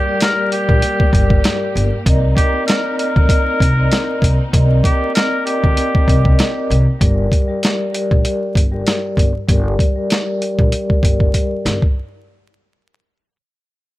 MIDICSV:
0, 0, Header, 1, 6, 480
1, 0, Start_track
1, 0, Key_signature, -2, "minor"
1, 0, Tempo, 618557
1, 1599, Time_signature, 4, 2, 24, 8
1, 10850, End_track
2, 0, Start_track
2, 0, Title_t, "Vibraphone"
2, 0, Program_c, 0, 11
2, 44, Note_on_c, 0, 55, 98
2, 52, Note_on_c, 0, 67, 91
2, 59, Note_on_c, 0, 70, 86
2, 67, Note_on_c, 0, 74, 111
2, 369, Note_off_c, 0, 55, 0
2, 373, Note_off_c, 0, 67, 0
2, 376, Note_off_c, 0, 70, 0
2, 380, Note_off_c, 0, 74, 0
2, 380, Note_on_c, 0, 55, 95
2, 388, Note_on_c, 0, 67, 87
2, 395, Note_on_c, 0, 70, 83
2, 403, Note_on_c, 0, 74, 103
2, 836, Note_off_c, 0, 55, 0
2, 840, Note_off_c, 0, 67, 0
2, 844, Note_off_c, 0, 70, 0
2, 848, Note_off_c, 0, 74, 0
2, 868, Note_on_c, 0, 55, 93
2, 876, Note_on_c, 0, 67, 90
2, 882, Note_on_c, 0, 70, 92
2, 891, Note_on_c, 0, 74, 102
2, 1435, Note_off_c, 0, 55, 0
2, 1439, Note_off_c, 0, 67, 0
2, 1442, Note_off_c, 0, 70, 0
2, 1446, Note_off_c, 0, 74, 0
2, 1594, Note_on_c, 0, 60, 96
2, 1601, Note_on_c, 0, 70, 95
2, 1609, Note_on_c, 0, 74, 96
2, 1617, Note_on_c, 0, 75, 109
2, 1940, Note_off_c, 0, 60, 0
2, 1943, Note_off_c, 0, 70, 0
2, 1948, Note_off_c, 0, 74, 0
2, 1951, Note_off_c, 0, 75, 0
2, 1964, Note_on_c, 0, 60, 97
2, 1972, Note_on_c, 0, 70, 91
2, 1979, Note_on_c, 0, 74, 97
2, 1987, Note_on_c, 0, 75, 114
2, 2289, Note_off_c, 0, 60, 0
2, 2293, Note_off_c, 0, 70, 0
2, 2296, Note_off_c, 0, 74, 0
2, 2301, Note_off_c, 0, 75, 0
2, 2308, Note_on_c, 0, 60, 85
2, 2316, Note_on_c, 0, 70, 78
2, 2323, Note_on_c, 0, 74, 88
2, 2331, Note_on_c, 0, 75, 111
2, 2760, Note_off_c, 0, 60, 0
2, 2764, Note_off_c, 0, 70, 0
2, 2768, Note_off_c, 0, 74, 0
2, 2772, Note_off_c, 0, 75, 0
2, 2923, Note_on_c, 0, 60, 98
2, 2930, Note_on_c, 0, 70, 91
2, 2938, Note_on_c, 0, 74, 90
2, 2946, Note_on_c, 0, 75, 111
2, 3366, Note_off_c, 0, 60, 0
2, 3369, Note_off_c, 0, 70, 0
2, 3373, Note_off_c, 0, 74, 0
2, 3377, Note_off_c, 0, 75, 0
2, 3508, Note_on_c, 0, 60, 98
2, 3516, Note_on_c, 0, 70, 84
2, 3523, Note_on_c, 0, 74, 88
2, 3530, Note_on_c, 0, 75, 103
2, 3857, Note_off_c, 0, 60, 0
2, 3861, Note_off_c, 0, 70, 0
2, 3865, Note_off_c, 0, 74, 0
2, 3868, Note_off_c, 0, 75, 0
2, 3883, Note_on_c, 0, 60, 95
2, 3890, Note_on_c, 0, 70, 91
2, 3898, Note_on_c, 0, 74, 88
2, 3905, Note_on_c, 0, 75, 105
2, 4208, Note_off_c, 0, 60, 0
2, 4212, Note_off_c, 0, 70, 0
2, 4216, Note_off_c, 0, 74, 0
2, 4219, Note_off_c, 0, 75, 0
2, 4225, Note_on_c, 0, 60, 93
2, 4233, Note_on_c, 0, 70, 88
2, 4241, Note_on_c, 0, 74, 86
2, 4248, Note_on_c, 0, 75, 104
2, 4679, Note_off_c, 0, 60, 0
2, 4683, Note_off_c, 0, 70, 0
2, 4687, Note_off_c, 0, 74, 0
2, 4690, Note_off_c, 0, 75, 0
2, 4706, Note_on_c, 0, 60, 97
2, 4713, Note_on_c, 0, 70, 93
2, 4721, Note_on_c, 0, 74, 82
2, 4728, Note_on_c, 0, 75, 110
2, 5274, Note_off_c, 0, 60, 0
2, 5278, Note_off_c, 0, 70, 0
2, 5282, Note_off_c, 0, 74, 0
2, 5285, Note_off_c, 0, 75, 0
2, 5427, Note_on_c, 0, 55, 90
2, 5434, Note_on_c, 0, 67, 81
2, 5443, Note_on_c, 0, 70, 79
2, 5450, Note_on_c, 0, 74, 103
2, 5776, Note_off_c, 0, 55, 0
2, 5780, Note_off_c, 0, 67, 0
2, 5784, Note_off_c, 0, 70, 0
2, 5788, Note_off_c, 0, 74, 0
2, 5804, Note_on_c, 0, 55, 93
2, 5812, Note_on_c, 0, 67, 86
2, 5820, Note_on_c, 0, 70, 85
2, 5827, Note_on_c, 0, 74, 99
2, 6129, Note_off_c, 0, 55, 0
2, 6133, Note_off_c, 0, 67, 0
2, 6137, Note_off_c, 0, 70, 0
2, 6140, Note_off_c, 0, 74, 0
2, 6147, Note_on_c, 0, 55, 91
2, 6155, Note_on_c, 0, 67, 87
2, 6162, Note_on_c, 0, 70, 86
2, 6170, Note_on_c, 0, 74, 105
2, 6600, Note_off_c, 0, 55, 0
2, 6604, Note_off_c, 0, 67, 0
2, 6607, Note_off_c, 0, 70, 0
2, 6611, Note_off_c, 0, 74, 0
2, 6764, Note_on_c, 0, 55, 93
2, 6771, Note_on_c, 0, 67, 88
2, 6779, Note_on_c, 0, 70, 88
2, 6786, Note_on_c, 0, 74, 98
2, 7206, Note_off_c, 0, 55, 0
2, 7210, Note_off_c, 0, 67, 0
2, 7214, Note_off_c, 0, 70, 0
2, 7217, Note_off_c, 0, 74, 0
2, 7354, Note_on_c, 0, 55, 97
2, 7361, Note_on_c, 0, 67, 92
2, 7369, Note_on_c, 0, 70, 93
2, 7376, Note_on_c, 0, 74, 109
2, 7700, Note_off_c, 0, 55, 0
2, 7703, Note_off_c, 0, 67, 0
2, 7707, Note_off_c, 0, 70, 0
2, 7711, Note_off_c, 0, 74, 0
2, 7724, Note_on_c, 0, 55, 92
2, 7732, Note_on_c, 0, 67, 87
2, 7739, Note_on_c, 0, 70, 81
2, 7747, Note_on_c, 0, 74, 103
2, 8049, Note_off_c, 0, 55, 0
2, 8053, Note_off_c, 0, 67, 0
2, 8056, Note_off_c, 0, 70, 0
2, 8060, Note_off_c, 0, 74, 0
2, 8060, Note_on_c, 0, 55, 86
2, 8067, Note_on_c, 0, 67, 82
2, 8075, Note_on_c, 0, 70, 76
2, 8082, Note_on_c, 0, 74, 98
2, 8516, Note_off_c, 0, 55, 0
2, 8520, Note_off_c, 0, 67, 0
2, 8524, Note_off_c, 0, 70, 0
2, 8527, Note_off_c, 0, 74, 0
2, 8547, Note_on_c, 0, 55, 87
2, 8554, Note_on_c, 0, 67, 84
2, 8562, Note_on_c, 0, 70, 86
2, 9115, Note_off_c, 0, 55, 0
2, 9118, Note_off_c, 0, 67, 0
2, 9122, Note_off_c, 0, 70, 0
2, 10850, End_track
3, 0, Start_track
3, 0, Title_t, "Muted trumpet"
3, 0, Program_c, 1, 59
3, 0, Note_on_c, 1, 67, 82
3, 135, Note_off_c, 1, 67, 0
3, 170, Note_on_c, 1, 70, 91
3, 381, Note_off_c, 1, 70, 0
3, 406, Note_on_c, 1, 67, 90
3, 1092, Note_off_c, 1, 67, 0
3, 1833, Note_on_c, 1, 67, 93
3, 2052, Note_off_c, 1, 67, 0
3, 2069, Note_on_c, 1, 70, 82
3, 2290, Note_off_c, 1, 70, 0
3, 2314, Note_on_c, 1, 70, 92
3, 3486, Note_off_c, 1, 70, 0
3, 3757, Note_on_c, 1, 67, 79
3, 3974, Note_off_c, 1, 67, 0
3, 3997, Note_on_c, 1, 70, 93
3, 4214, Note_off_c, 1, 70, 0
3, 4235, Note_on_c, 1, 67, 89
3, 4926, Note_off_c, 1, 67, 0
3, 10850, End_track
4, 0, Start_track
4, 0, Title_t, "String section"
4, 0, Program_c, 2, 48
4, 0, Note_on_c, 2, 46, 81
4, 0, Note_on_c, 2, 55, 74
4, 0, Note_on_c, 2, 58, 71
4, 0, Note_on_c, 2, 67, 89
4, 1568, Note_off_c, 2, 55, 0
4, 1568, Note_off_c, 2, 67, 0
4, 1597, Note_on_c, 2, 60, 75
4, 1597, Note_on_c, 2, 63, 95
4, 5407, Note_off_c, 2, 60, 0
4, 5407, Note_off_c, 2, 63, 0
4, 5408, Note_off_c, 2, 46, 0
4, 5408, Note_off_c, 2, 58, 0
4, 10850, End_track
5, 0, Start_track
5, 0, Title_t, "Upright bass"
5, 0, Program_c, 3, 32
5, 535, Note_on_c, 3, 34, 98
5, 620, Note_off_c, 3, 34, 0
5, 878, Note_on_c, 3, 31, 97
5, 1074, Note_off_c, 3, 31, 0
5, 1361, Note_on_c, 3, 31, 97
5, 1471, Note_off_c, 3, 31, 0
5, 1600, Note_on_c, 3, 36, 106
5, 1796, Note_off_c, 3, 36, 0
5, 2455, Note_on_c, 3, 38, 101
5, 2540, Note_off_c, 3, 38, 0
5, 2797, Note_on_c, 3, 36, 96
5, 2994, Note_off_c, 3, 36, 0
5, 3275, Note_on_c, 3, 36, 93
5, 3387, Note_off_c, 3, 36, 0
5, 3520, Note_on_c, 3, 36, 109
5, 3715, Note_off_c, 3, 36, 0
5, 4374, Note_on_c, 3, 38, 97
5, 4460, Note_off_c, 3, 38, 0
5, 4718, Note_on_c, 3, 36, 105
5, 4914, Note_off_c, 3, 36, 0
5, 5202, Note_on_c, 3, 36, 100
5, 5311, Note_off_c, 3, 36, 0
5, 5441, Note_on_c, 3, 31, 109
5, 5636, Note_off_c, 3, 31, 0
5, 6297, Note_on_c, 3, 34, 95
5, 6381, Note_off_c, 3, 34, 0
5, 6639, Note_on_c, 3, 31, 88
5, 6835, Note_off_c, 3, 31, 0
5, 7118, Note_on_c, 3, 31, 97
5, 7229, Note_off_c, 3, 31, 0
5, 7361, Note_on_c, 3, 31, 109
5, 7556, Note_off_c, 3, 31, 0
5, 8216, Note_on_c, 3, 34, 93
5, 8301, Note_off_c, 3, 34, 0
5, 8559, Note_on_c, 3, 31, 85
5, 8755, Note_off_c, 3, 31, 0
5, 9043, Note_on_c, 3, 31, 90
5, 9152, Note_off_c, 3, 31, 0
5, 10850, End_track
6, 0, Start_track
6, 0, Title_t, "Drums"
6, 159, Note_on_c, 9, 42, 108
6, 172, Note_on_c, 9, 38, 127
6, 236, Note_off_c, 9, 42, 0
6, 250, Note_off_c, 9, 38, 0
6, 404, Note_on_c, 9, 42, 80
6, 481, Note_off_c, 9, 42, 0
6, 534, Note_on_c, 9, 36, 109
6, 612, Note_off_c, 9, 36, 0
6, 639, Note_on_c, 9, 42, 91
6, 716, Note_off_c, 9, 42, 0
6, 776, Note_on_c, 9, 36, 97
6, 853, Note_off_c, 9, 36, 0
6, 876, Note_on_c, 9, 36, 99
6, 890, Note_on_c, 9, 42, 75
6, 954, Note_off_c, 9, 36, 0
6, 968, Note_off_c, 9, 42, 0
6, 1011, Note_on_c, 9, 36, 94
6, 1089, Note_off_c, 9, 36, 0
6, 1119, Note_on_c, 9, 42, 94
6, 1128, Note_on_c, 9, 38, 120
6, 1197, Note_off_c, 9, 42, 0
6, 1205, Note_off_c, 9, 38, 0
6, 1372, Note_on_c, 9, 42, 77
6, 1449, Note_off_c, 9, 42, 0
6, 1599, Note_on_c, 9, 36, 115
6, 1601, Note_on_c, 9, 42, 97
6, 1677, Note_off_c, 9, 36, 0
6, 1679, Note_off_c, 9, 42, 0
6, 1836, Note_on_c, 9, 36, 99
6, 1845, Note_on_c, 9, 42, 71
6, 1914, Note_off_c, 9, 36, 0
6, 1923, Note_off_c, 9, 42, 0
6, 2079, Note_on_c, 9, 42, 108
6, 2092, Note_on_c, 9, 38, 126
6, 2156, Note_off_c, 9, 42, 0
6, 2170, Note_off_c, 9, 38, 0
6, 2323, Note_on_c, 9, 42, 80
6, 2400, Note_off_c, 9, 42, 0
6, 2454, Note_on_c, 9, 36, 110
6, 2531, Note_off_c, 9, 36, 0
6, 2553, Note_on_c, 9, 36, 106
6, 2559, Note_on_c, 9, 42, 94
6, 2631, Note_off_c, 9, 36, 0
6, 2636, Note_off_c, 9, 42, 0
6, 2796, Note_on_c, 9, 36, 103
6, 2810, Note_on_c, 9, 42, 76
6, 2874, Note_off_c, 9, 36, 0
6, 2887, Note_off_c, 9, 42, 0
6, 3038, Note_on_c, 9, 42, 96
6, 3047, Note_on_c, 9, 38, 120
6, 3115, Note_off_c, 9, 42, 0
6, 3124, Note_off_c, 9, 38, 0
6, 3274, Note_on_c, 9, 36, 96
6, 3291, Note_on_c, 9, 42, 76
6, 3352, Note_off_c, 9, 36, 0
6, 3368, Note_off_c, 9, 42, 0
6, 3518, Note_on_c, 9, 36, 115
6, 3520, Note_on_c, 9, 42, 96
6, 3596, Note_off_c, 9, 36, 0
6, 3598, Note_off_c, 9, 42, 0
6, 3756, Note_on_c, 9, 36, 97
6, 3764, Note_on_c, 9, 42, 68
6, 3834, Note_off_c, 9, 36, 0
6, 3842, Note_off_c, 9, 42, 0
6, 3999, Note_on_c, 9, 42, 109
6, 4012, Note_on_c, 9, 38, 125
6, 4076, Note_off_c, 9, 42, 0
6, 4090, Note_off_c, 9, 38, 0
6, 4243, Note_on_c, 9, 42, 84
6, 4321, Note_off_c, 9, 42, 0
6, 4373, Note_on_c, 9, 36, 106
6, 4451, Note_off_c, 9, 36, 0
6, 4478, Note_on_c, 9, 42, 89
6, 4556, Note_off_c, 9, 42, 0
6, 4615, Note_on_c, 9, 36, 98
6, 4693, Note_off_c, 9, 36, 0
6, 4716, Note_on_c, 9, 36, 100
6, 4729, Note_on_c, 9, 42, 75
6, 4794, Note_off_c, 9, 36, 0
6, 4807, Note_off_c, 9, 42, 0
6, 4851, Note_on_c, 9, 36, 91
6, 4929, Note_off_c, 9, 36, 0
6, 4958, Note_on_c, 9, 42, 95
6, 4967, Note_on_c, 9, 38, 118
6, 5035, Note_off_c, 9, 42, 0
6, 5044, Note_off_c, 9, 38, 0
6, 5211, Note_on_c, 9, 42, 76
6, 5289, Note_off_c, 9, 42, 0
6, 5440, Note_on_c, 9, 36, 114
6, 5442, Note_on_c, 9, 42, 91
6, 5517, Note_off_c, 9, 36, 0
6, 5519, Note_off_c, 9, 42, 0
6, 5677, Note_on_c, 9, 36, 95
6, 5686, Note_on_c, 9, 42, 65
6, 5755, Note_off_c, 9, 36, 0
6, 5763, Note_off_c, 9, 42, 0
6, 5920, Note_on_c, 9, 42, 102
6, 5934, Note_on_c, 9, 38, 122
6, 5998, Note_off_c, 9, 42, 0
6, 6011, Note_off_c, 9, 38, 0
6, 6165, Note_on_c, 9, 42, 76
6, 6243, Note_off_c, 9, 42, 0
6, 6295, Note_on_c, 9, 36, 100
6, 6373, Note_off_c, 9, 36, 0
6, 6401, Note_on_c, 9, 42, 86
6, 6479, Note_off_c, 9, 42, 0
6, 6638, Note_on_c, 9, 36, 97
6, 6652, Note_on_c, 9, 42, 70
6, 6716, Note_off_c, 9, 36, 0
6, 6730, Note_off_c, 9, 42, 0
6, 6880, Note_on_c, 9, 42, 90
6, 6889, Note_on_c, 9, 38, 112
6, 6957, Note_off_c, 9, 42, 0
6, 6966, Note_off_c, 9, 38, 0
6, 7116, Note_on_c, 9, 36, 93
6, 7133, Note_on_c, 9, 42, 72
6, 7194, Note_off_c, 9, 36, 0
6, 7211, Note_off_c, 9, 42, 0
6, 7360, Note_on_c, 9, 36, 109
6, 7363, Note_on_c, 9, 42, 91
6, 7438, Note_off_c, 9, 36, 0
6, 7440, Note_off_c, 9, 42, 0
6, 7598, Note_on_c, 9, 36, 96
6, 7607, Note_on_c, 9, 42, 67
6, 7675, Note_off_c, 9, 36, 0
6, 7684, Note_off_c, 9, 42, 0
6, 7841, Note_on_c, 9, 42, 101
6, 7854, Note_on_c, 9, 38, 119
6, 7919, Note_off_c, 9, 42, 0
6, 7932, Note_off_c, 9, 38, 0
6, 8085, Note_on_c, 9, 42, 75
6, 8163, Note_off_c, 9, 42, 0
6, 8215, Note_on_c, 9, 36, 99
6, 8293, Note_off_c, 9, 36, 0
6, 8321, Note_on_c, 9, 42, 88
6, 8398, Note_off_c, 9, 42, 0
6, 8457, Note_on_c, 9, 36, 91
6, 8535, Note_off_c, 9, 36, 0
6, 8558, Note_on_c, 9, 36, 89
6, 8572, Note_on_c, 9, 42, 72
6, 8635, Note_off_c, 9, 36, 0
6, 8649, Note_off_c, 9, 42, 0
6, 8692, Note_on_c, 9, 36, 88
6, 8770, Note_off_c, 9, 36, 0
6, 8800, Note_on_c, 9, 36, 53
6, 8800, Note_on_c, 9, 42, 86
6, 8878, Note_off_c, 9, 36, 0
6, 8878, Note_off_c, 9, 42, 0
6, 9047, Note_on_c, 9, 38, 84
6, 9052, Note_on_c, 9, 42, 67
6, 9125, Note_off_c, 9, 38, 0
6, 9130, Note_off_c, 9, 42, 0
6, 9175, Note_on_c, 9, 36, 83
6, 9253, Note_off_c, 9, 36, 0
6, 10850, End_track
0, 0, End_of_file